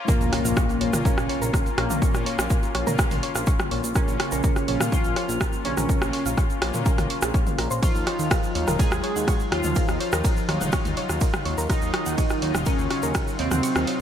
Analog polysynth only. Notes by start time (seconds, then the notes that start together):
0.08 A#3
1.05 C#4
1.78 A#3
3.95 C#4
4.92 F4
5.65 C#4
7.83 F4
8.79 G#4
9.52 F4
11.70 D#4
12.66 C#4
13.39 C4